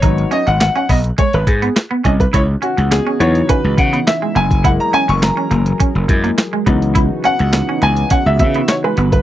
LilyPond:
<<
  \new Staff \with { instrumentName = "Grand piano" } { \time 4/4 \key cis \minor \tempo 4 = 104 cis''8 dis''16 fis''16 fis''16 fis''16 dis''8 cis''16 b'16 gis'8 r8 dis''16 b'16 | cis''8 fis'8 gis'8 cis''8 b'8 fis''8 e''8 gis''8 | fis''16 ais''16 gis''16 cis'''16 ais''4 r2 | r8 fis''4 gis''8 fis''16 e''16 e''8 cis''16 b'8 b'16 | }
  \new Staff \with { instrumentName = "Grand piano" } { \time 4/4 \key cis \minor <fis b dis'>4. r2 r8 | r4. <e fis b dis'>2 r8 | <gis ais e'>4. r4 <gis ais e'>8 r8 <e fis b dis'>8~ | <e fis b dis'>2.~ <e fis b dis'>8 r8 | }
  \new Staff \with { instrumentName = "Clean electric guitar" } { \time 4/4 \key cis \minor dis'16 r16 cis'16 r8 cis'16 b16 r16 gis16 r8 b16 r16 b16 cis'16 r16 | e'16 r16 cis'16 r8 cis'16 b16 r16 cis'16 r8 b16 r16 gis16 ais16 r16 | e'16 r16 cis'16 r8 cis'16 ais16 r16 cis'16 r8 ais16 r16 gis16 b16 r16 | e'16 r16 cis'16 r8 cis'16 b16 r16 cis'16 r8 b16 r16 gis16 b16 r16 | }
  \new Staff \with { instrumentName = "Analog synth pad" } { \time 4/4 \key cis \minor r1 | <cis e b dis' fis'>2.~ <cis e b dis' fis'>8 <fis gis' ais'>8~ | <fis gis' ais'>2.~ <fis gis' ais'>8 <cis e b dis' fis'>8~ | <cis e b dis' fis'>1 | }
  \new Staff \with { instrumentName = "Slap bass" } { \clef bass \time 4/4 \key cis \minor gis,,8 r16 gis,,8 r16 b,,8 r16 gis,,16 gis,8 r8 bis,,8 | cis,8 r16 cis,8 r16 e,8 r16 cis,16 cis8 r8 fis,,8~ | fis,,8 r16 fis,,8 r16 fis,,8 r16 fis,,16 fis,8 r8 cis,8~ | cis,8 r16 cis,8 r16 cis,8 r16 cis,16 cis8 r8 g,,8 | }
  \new DrumStaff \with { instrumentName = "Drums" } \drummode { \time 4/4 <hh bd>16 hh16 hh16 hh16 <hc hh sn>16 hh16 <hho bd>16 hh16 <hh bd>16 hh16 <hh bd>16 hh16 <hc hh sn>8 <hh bd>16 <hh bd>16 | <hh bd>8 hh16 hh16 <hc hh sn>8 hh16 hh16 <hh bd>8 <hh bd>16 hh16 <hc hh sn>8 hh16 <hh bd>16 | <hh bd>8 hh16 hh16 <hc hh sn>8 hh16 hh16 <hh bd>8 <hh bd>16 hh16 <hc hh sn>8 <hh bd>16 hh16 | <hh bd>8 hh16 hh16 <hc hh sn>8 hh16 hh16 <hh bd>8 <hh bd>16 hh16 <hc hh sn>8 hh16 <hh bd>16 | }
>>